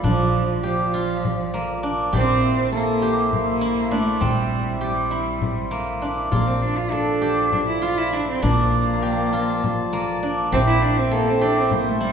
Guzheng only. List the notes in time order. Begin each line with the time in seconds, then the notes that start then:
Already playing: E4 G4 A4
0.04 D4
0.63 G4
0.94 F4
1.54 A#3
1.83 D4
2.13 G4
2.72 A4
3.02 G4
3.61 E4
3.91 D4
4.21 C4
4.81 G4
5.11 E4
5.71 A#3
6.02 D4
6.32 F4
6.92 A4
7.21 G4
7.82 F4
8.12 E4
8.42 D4
9.02 G4
9.33 F4
9.93 A#3
10.23 D4
10.52 G4
11.11 A4
11.41 G4
12.00 E4